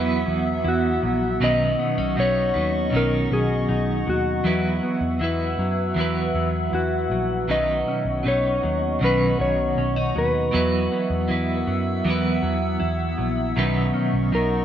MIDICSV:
0, 0, Header, 1, 6, 480
1, 0, Start_track
1, 0, Key_signature, 5, "major"
1, 0, Tempo, 759494
1, 894, Time_signature, 4, 2, 24, 8
1, 9258, End_track
2, 0, Start_track
2, 0, Title_t, "Ambient pad"
2, 0, Program_c, 0, 92
2, 0, Note_on_c, 0, 59, 79
2, 0, Note_on_c, 0, 76, 69
2, 0, Note_on_c, 0, 78, 74
2, 0, Note_on_c, 0, 88, 96
2, 872, Note_off_c, 0, 78, 0
2, 873, Note_off_c, 0, 76, 0
2, 876, Note_off_c, 0, 88, 0
2, 899, Note_on_c, 0, 75, 71
2, 901, Note_on_c, 0, 78, 74
2, 903, Note_on_c, 0, 85, 86
2, 2790, Note_off_c, 0, 59, 0
2, 2797, Note_off_c, 0, 75, 0
2, 2800, Note_off_c, 0, 85, 0
2, 2801, Note_on_c, 0, 88, 87
2, 2803, Note_on_c, 0, 71, 76
2, 2803, Note_on_c, 0, 76, 67
2, 4708, Note_off_c, 0, 88, 0
2, 4710, Note_off_c, 0, 71, 0
2, 4710, Note_off_c, 0, 76, 0
2, 4721, Note_on_c, 0, 75, 71
2, 4723, Note_on_c, 0, 59, 75
2, 4726, Note_on_c, 0, 85, 90
2, 6629, Note_off_c, 0, 75, 0
2, 6631, Note_off_c, 0, 85, 0
2, 6649, Note_on_c, 0, 88, 88
2, 6651, Note_on_c, 0, 76, 71
2, 8552, Note_off_c, 0, 78, 0
2, 8553, Note_off_c, 0, 88, 0
2, 8554, Note_off_c, 0, 76, 0
2, 8576, Note_on_c, 0, 85, 91
2, 8579, Note_on_c, 0, 75, 72
2, 8580, Note_on_c, 0, 78, 75
2, 9258, Note_off_c, 0, 59, 0
2, 9258, Note_off_c, 0, 75, 0
2, 9258, Note_off_c, 0, 78, 0
2, 9258, Note_off_c, 0, 85, 0
2, 9258, End_track
3, 0, Start_track
3, 0, Title_t, "Clean electric guitar"
3, 0, Program_c, 1, 27
3, 0, Note_on_c, 1, 66, 94
3, 394, Note_off_c, 1, 66, 0
3, 431, Note_on_c, 1, 66, 98
3, 910, Note_on_c, 1, 75, 108
3, 917, Note_off_c, 1, 66, 0
3, 1387, Note_off_c, 1, 75, 0
3, 1389, Note_on_c, 1, 73, 115
3, 1874, Note_on_c, 1, 70, 111
3, 1876, Note_off_c, 1, 73, 0
3, 2104, Note_off_c, 1, 70, 0
3, 2106, Note_on_c, 1, 68, 104
3, 2586, Note_off_c, 1, 68, 0
3, 2589, Note_on_c, 1, 66, 83
3, 3996, Note_off_c, 1, 66, 0
3, 4263, Note_on_c, 1, 66, 94
3, 4747, Note_on_c, 1, 75, 105
3, 4753, Note_off_c, 1, 66, 0
3, 5232, Note_off_c, 1, 75, 0
3, 5234, Note_on_c, 1, 73, 112
3, 5714, Note_off_c, 1, 73, 0
3, 5716, Note_on_c, 1, 71, 99
3, 5947, Note_off_c, 1, 71, 0
3, 5949, Note_on_c, 1, 73, 99
3, 6433, Note_off_c, 1, 73, 0
3, 6436, Note_on_c, 1, 71, 94
3, 7321, Note_off_c, 1, 71, 0
3, 7321, Note_on_c, 1, 70, 94
3, 7840, Note_off_c, 1, 70, 0
3, 9067, Note_on_c, 1, 70, 107
3, 9258, Note_off_c, 1, 70, 0
3, 9258, End_track
4, 0, Start_track
4, 0, Title_t, "Clean electric guitar"
4, 0, Program_c, 2, 27
4, 0, Note_on_c, 2, 52, 92
4, 0, Note_on_c, 2, 54, 87
4, 0, Note_on_c, 2, 59, 94
4, 0, Note_on_c, 2, 64, 96
4, 0, Note_on_c, 2, 71, 113
4, 888, Note_on_c, 2, 47, 95
4, 889, Note_off_c, 2, 52, 0
4, 892, Note_off_c, 2, 54, 0
4, 892, Note_on_c, 2, 51, 90
4, 894, Note_off_c, 2, 59, 0
4, 894, Note_on_c, 2, 54, 91
4, 896, Note_on_c, 2, 61, 96
4, 898, Note_off_c, 2, 64, 0
4, 901, Note_off_c, 2, 71, 0
4, 901, Note_on_c, 2, 63, 86
4, 904, Note_on_c, 2, 71, 90
4, 1362, Note_off_c, 2, 54, 0
4, 1364, Note_on_c, 2, 54, 62
4, 1369, Note_off_c, 2, 61, 0
4, 1371, Note_off_c, 2, 47, 0
4, 1373, Note_off_c, 2, 51, 0
4, 1377, Note_on_c, 2, 61, 62
4, 1378, Note_off_c, 2, 63, 0
4, 1385, Note_on_c, 2, 63, 62
4, 1391, Note_off_c, 2, 71, 0
4, 1394, Note_on_c, 2, 71, 60
4, 1596, Note_off_c, 2, 71, 0
4, 1604, Note_on_c, 2, 71, 55
4, 1606, Note_off_c, 2, 63, 0
4, 1609, Note_off_c, 2, 54, 0
4, 1614, Note_on_c, 2, 63, 51
4, 1616, Note_off_c, 2, 61, 0
4, 1623, Note_on_c, 2, 61, 44
4, 1630, Note_on_c, 2, 54, 44
4, 1833, Note_on_c, 2, 47, 85
4, 1847, Note_off_c, 2, 54, 0
4, 1848, Note_on_c, 2, 51, 79
4, 1849, Note_off_c, 2, 71, 0
4, 1854, Note_off_c, 2, 63, 0
4, 1855, Note_off_c, 2, 61, 0
4, 1855, Note_on_c, 2, 54, 88
4, 1863, Note_on_c, 2, 61, 91
4, 1870, Note_on_c, 2, 63, 92
4, 2802, Note_off_c, 2, 51, 0
4, 2804, Note_off_c, 2, 47, 0
4, 2804, Note_on_c, 2, 52, 83
4, 2806, Note_off_c, 2, 54, 0
4, 2809, Note_on_c, 2, 54, 82
4, 2810, Note_off_c, 2, 61, 0
4, 2813, Note_on_c, 2, 59, 84
4, 2816, Note_off_c, 2, 63, 0
4, 2819, Note_on_c, 2, 64, 90
4, 2823, Note_on_c, 2, 71, 96
4, 3280, Note_off_c, 2, 54, 0
4, 3282, Note_on_c, 2, 54, 66
4, 3290, Note_off_c, 2, 52, 0
4, 3290, Note_off_c, 2, 59, 0
4, 3292, Note_on_c, 2, 59, 67
4, 3294, Note_off_c, 2, 64, 0
4, 3302, Note_on_c, 2, 64, 67
4, 3307, Note_off_c, 2, 71, 0
4, 3310, Note_on_c, 2, 71, 75
4, 3756, Note_on_c, 2, 52, 84
4, 3766, Note_off_c, 2, 54, 0
4, 3768, Note_on_c, 2, 54, 96
4, 3776, Note_off_c, 2, 59, 0
4, 3778, Note_off_c, 2, 64, 0
4, 3778, Note_on_c, 2, 59, 94
4, 3786, Note_on_c, 2, 64, 90
4, 3792, Note_off_c, 2, 71, 0
4, 3794, Note_on_c, 2, 71, 105
4, 4725, Note_off_c, 2, 52, 0
4, 4725, Note_on_c, 2, 47, 79
4, 4729, Note_off_c, 2, 54, 0
4, 4731, Note_on_c, 2, 51, 78
4, 4731, Note_on_c, 2, 54, 93
4, 4733, Note_off_c, 2, 59, 0
4, 4736, Note_on_c, 2, 61, 86
4, 4739, Note_off_c, 2, 64, 0
4, 4741, Note_off_c, 2, 71, 0
4, 4741, Note_on_c, 2, 63, 86
4, 4744, Note_on_c, 2, 71, 92
4, 5199, Note_off_c, 2, 54, 0
4, 5201, Note_on_c, 2, 54, 53
4, 5202, Note_off_c, 2, 61, 0
4, 5209, Note_on_c, 2, 61, 56
4, 5210, Note_off_c, 2, 47, 0
4, 5213, Note_off_c, 2, 51, 0
4, 5214, Note_off_c, 2, 63, 0
4, 5221, Note_on_c, 2, 63, 61
4, 5222, Note_off_c, 2, 71, 0
4, 5224, Note_on_c, 2, 71, 64
4, 5682, Note_on_c, 2, 47, 81
4, 5692, Note_off_c, 2, 61, 0
4, 5693, Note_on_c, 2, 51, 87
4, 5698, Note_off_c, 2, 63, 0
4, 5700, Note_off_c, 2, 54, 0
4, 5703, Note_on_c, 2, 54, 85
4, 5706, Note_on_c, 2, 61, 80
4, 5714, Note_on_c, 2, 63, 85
4, 5720, Note_off_c, 2, 71, 0
4, 5723, Note_on_c, 2, 71, 93
4, 6641, Note_off_c, 2, 51, 0
4, 6643, Note_on_c, 2, 52, 87
4, 6648, Note_off_c, 2, 47, 0
4, 6648, Note_off_c, 2, 54, 0
4, 6650, Note_on_c, 2, 54, 89
4, 6651, Note_off_c, 2, 61, 0
4, 6654, Note_on_c, 2, 59, 86
4, 6657, Note_off_c, 2, 63, 0
4, 6660, Note_on_c, 2, 64, 91
4, 6662, Note_off_c, 2, 71, 0
4, 6664, Note_on_c, 2, 71, 105
4, 7125, Note_off_c, 2, 54, 0
4, 7128, Note_on_c, 2, 54, 70
4, 7129, Note_off_c, 2, 52, 0
4, 7134, Note_off_c, 2, 59, 0
4, 7136, Note_on_c, 2, 59, 62
4, 7137, Note_off_c, 2, 64, 0
4, 7146, Note_on_c, 2, 64, 61
4, 7147, Note_off_c, 2, 71, 0
4, 7150, Note_on_c, 2, 71, 72
4, 7612, Note_on_c, 2, 52, 101
4, 7616, Note_off_c, 2, 54, 0
4, 7619, Note_on_c, 2, 54, 97
4, 7620, Note_off_c, 2, 64, 0
4, 7628, Note_off_c, 2, 59, 0
4, 7630, Note_on_c, 2, 59, 94
4, 7643, Note_on_c, 2, 64, 100
4, 7647, Note_off_c, 2, 71, 0
4, 7649, Note_on_c, 2, 71, 94
4, 8571, Note_off_c, 2, 52, 0
4, 8571, Note_on_c, 2, 47, 97
4, 8573, Note_on_c, 2, 51, 96
4, 8576, Note_off_c, 2, 54, 0
4, 8579, Note_off_c, 2, 59, 0
4, 8579, Note_on_c, 2, 54, 99
4, 8581, Note_on_c, 2, 61, 109
4, 8584, Note_off_c, 2, 64, 0
4, 8586, Note_off_c, 2, 71, 0
4, 8587, Note_on_c, 2, 63, 108
4, 8588, Note_on_c, 2, 71, 121
4, 9051, Note_off_c, 2, 54, 0
4, 9052, Note_off_c, 2, 61, 0
4, 9053, Note_off_c, 2, 47, 0
4, 9053, Note_on_c, 2, 54, 58
4, 9054, Note_off_c, 2, 51, 0
4, 9059, Note_off_c, 2, 63, 0
4, 9060, Note_on_c, 2, 61, 59
4, 9067, Note_on_c, 2, 63, 63
4, 9079, Note_off_c, 2, 71, 0
4, 9258, Note_off_c, 2, 54, 0
4, 9258, Note_off_c, 2, 61, 0
4, 9258, Note_off_c, 2, 63, 0
4, 9258, End_track
5, 0, Start_track
5, 0, Title_t, "Clean electric guitar"
5, 0, Program_c, 3, 27
5, 0, Note_on_c, 3, 54, 69
5, 0, Note_on_c, 3, 59, 58
5, 0, Note_on_c, 3, 64, 72
5, 162, Note_off_c, 3, 54, 0
5, 164, Note_on_c, 3, 54, 60
5, 399, Note_off_c, 3, 64, 0
5, 407, Note_on_c, 3, 64, 76
5, 647, Note_off_c, 3, 54, 0
5, 650, Note_on_c, 3, 54, 65
5, 891, Note_off_c, 3, 54, 0
5, 893, Note_on_c, 3, 54, 79
5, 939, Note_off_c, 3, 64, 0
5, 1130, Note_off_c, 3, 59, 0
5, 1132, Note_on_c, 3, 59, 64
5, 1250, Note_off_c, 3, 59, 0
5, 1250, Note_on_c, 3, 61, 58
5, 1370, Note_on_c, 3, 63, 71
5, 1611, Note_off_c, 3, 54, 0
5, 1613, Note_on_c, 3, 54, 61
5, 1842, Note_off_c, 3, 61, 0
5, 1849, Note_on_c, 3, 61, 58
5, 2089, Note_off_c, 3, 54, 0
5, 2092, Note_on_c, 3, 54, 60
5, 2322, Note_off_c, 3, 63, 0
5, 2329, Note_on_c, 3, 63, 78
5, 2570, Note_off_c, 3, 54, 0
5, 2572, Note_on_c, 3, 54, 60
5, 2804, Note_off_c, 3, 54, 0
5, 2806, Note_on_c, 3, 54, 76
5, 2860, Note_off_c, 3, 61, 0
5, 2860, Note_off_c, 3, 63, 0
5, 3053, Note_on_c, 3, 59, 60
5, 3292, Note_on_c, 3, 64, 72
5, 3529, Note_off_c, 3, 54, 0
5, 3532, Note_on_c, 3, 54, 64
5, 3772, Note_off_c, 3, 59, 0
5, 3775, Note_on_c, 3, 59, 55
5, 4014, Note_off_c, 3, 54, 0
5, 4016, Note_on_c, 3, 54, 59
5, 4246, Note_off_c, 3, 64, 0
5, 4253, Note_on_c, 3, 64, 68
5, 4494, Note_off_c, 3, 54, 0
5, 4496, Note_on_c, 3, 54, 70
5, 4734, Note_off_c, 3, 54, 0
5, 4737, Note_on_c, 3, 54, 71
5, 4782, Note_off_c, 3, 64, 0
5, 4976, Note_off_c, 3, 59, 0
5, 4979, Note_on_c, 3, 61, 60
5, 5217, Note_on_c, 3, 63, 72
5, 5452, Note_off_c, 3, 54, 0
5, 5454, Note_on_c, 3, 54, 65
5, 5688, Note_off_c, 3, 61, 0
5, 5695, Note_on_c, 3, 61, 57
5, 5935, Note_off_c, 3, 54, 0
5, 5938, Note_on_c, 3, 54, 62
5, 6172, Note_off_c, 3, 61, 0
5, 6176, Note_off_c, 3, 63, 0
5, 6180, Note_on_c, 3, 61, 70
5, 6296, Note_off_c, 3, 61, 0
5, 6296, Note_on_c, 3, 63, 60
5, 6416, Note_off_c, 3, 54, 0
5, 6418, Note_on_c, 3, 54, 64
5, 6654, Note_off_c, 3, 54, 0
5, 6657, Note_on_c, 3, 54, 78
5, 6703, Note_off_c, 3, 63, 0
5, 6900, Note_on_c, 3, 59, 61
5, 7132, Note_on_c, 3, 64, 71
5, 7374, Note_off_c, 3, 54, 0
5, 7376, Note_on_c, 3, 54, 72
5, 7611, Note_off_c, 3, 59, 0
5, 7613, Note_on_c, 3, 59, 60
5, 7850, Note_off_c, 3, 54, 0
5, 7852, Note_on_c, 3, 54, 66
5, 8080, Note_off_c, 3, 64, 0
5, 8087, Note_on_c, 3, 64, 76
5, 8325, Note_off_c, 3, 54, 0
5, 8328, Note_on_c, 3, 54, 66
5, 8566, Note_off_c, 3, 54, 0
5, 8569, Note_on_c, 3, 54, 84
5, 8619, Note_off_c, 3, 64, 0
5, 8806, Note_off_c, 3, 59, 0
5, 8809, Note_on_c, 3, 61, 62
5, 9051, Note_on_c, 3, 63, 71
5, 9258, Note_off_c, 3, 54, 0
5, 9258, Note_off_c, 3, 61, 0
5, 9258, Note_off_c, 3, 63, 0
5, 9258, End_track
6, 0, Start_track
6, 0, Title_t, "Picked electric bass"
6, 0, Program_c, 4, 34
6, 0, Note_on_c, 4, 40, 96
6, 148, Note_off_c, 4, 40, 0
6, 178, Note_on_c, 4, 40, 102
6, 388, Note_off_c, 4, 40, 0
6, 408, Note_on_c, 4, 40, 98
6, 622, Note_off_c, 4, 40, 0
6, 654, Note_on_c, 4, 34, 88
6, 865, Note_off_c, 4, 34, 0
6, 888, Note_on_c, 4, 35, 111
6, 1102, Note_off_c, 4, 35, 0
6, 1253, Note_on_c, 4, 35, 103
6, 1359, Note_off_c, 4, 35, 0
6, 1380, Note_on_c, 4, 35, 100
6, 1589, Note_off_c, 4, 35, 0
6, 1617, Note_on_c, 4, 39, 85
6, 1827, Note_off_c, 4, 39, 0
6, 1855, Note_on_c, 4, 35, 104
6, 2066, Note_off_c, 4, 35, 0
6, 2093, Note_on_c, 4, 35, 93
6, 2305, Note_off_c, 4, 35, 0
6, 2335, Note_on_c, 4, 35, 111
6, 2546, Note_off_c, 4, 35, 0
6, 2576, Note_on_c, 4, 39, 90
6, 2787, Note_off_c, 4, 39, 0
6, 2813, Note_on_c, 4, 40, 97
6, 3025, Note_off_c, 4, 40, 0
6, 3167, Note_on_c, 4, 40, 100
6, 3276, Note_off_c, 4, 40, 0
6, 3292, Note_on_c, 4, 40, 107
6, 3504, Note_off_c, 4, 40, 0
6, 3529, Note_on_c, 4, 42, 79
6, 3742, Note_off_c, 4, 42, 0
6, 3769, Note_on_c, 4, 40, 90
6, 3983, Note_off_c, 4, 40, 0
6, 4010, Note_on_c, 4, 40, 99
6, 4223, Note_off_c, 4, 40, 0
6, 4251, Note_on_c, 4, 40, 103
6, 4464, Note_off_c, 4, 40, 0
6, 4487, Note_on_c, 4, 34, 84
6, 4702, Note_off_c, 4, 34, 0
6, 4728, Note_on_c, 4, 35, 104
6, 4942, Note_off_c, 4, 35, 0
6, 5091, Note_on_c, 4, 35, 85
6, 5198, Note_off_c, 4, 35, 0
6, 5217, Note_on_c, 4, 35, 100
6, 5427, Note_off_c, 4, 35, 0
6, 5461, Note_on_c, 4, 39, 88
6, 5669, Note_off_c, 4, 39, 0
6, 5697, Note_on_c, 4, 35, 94
6, 5907, Note_off_c, 4, 35, 0
6, 5940, Note_on_c, 4, 35, 98
6, 6149, Note_off_c, 4, 35, 0
6, 6177, Note_on_c, 4, 35, 106
6, 6387, Note_off_c, 4, 35, 0
6, 6422, Note_on_c, 4, 39, 92
6, 6630, Note_off_c, 4, 39, 0
6, 6665, Note_on_c, 4, 40, 108
6, 6872, Note_off_c, 4, 40, 0
6, 7017, Note_on_c, 4, 40, 100
6, 7122, Note_off_c, 4, 40, 0
6, 7142, Note_on_c, 4, 40, 107
6, 7350, Note_off_c, 4, 40, 0
6, 7379, Note_on_c, 4, 42, 87
6, 7588, Note_off_c, 4, 42, 0
6, 7615, Note_on_c, 4, 40, 96
6, 7826, Note_off_c, 4, 40, 0
6, 7856, Note_on_c, 4, 40, 112
6, 8067, Note_off_c, 4, 40, 0
6, 8098, Note_on_c, 4, 40, 98
6, 8308, Note_off_c, 4, 40, 0
6, 8336, Note_on_c, 4, 34, 95
6, 8547, Note_off_c, 4, 34, 0
6, 8575, Note_on_c, 4, 35, 114
6, 8786, Note_off_c, 4, 35, 0
6, 8934, Note_on_c, 4, 35, 96
6, 9040, Note_off_c, 4, 35, 0
6, 9054, Note_on_c, 4, 35, 103
6, 9258, Note_off_c, 4, 35, 0
6, 9258, End_track
0, 0, End_of_file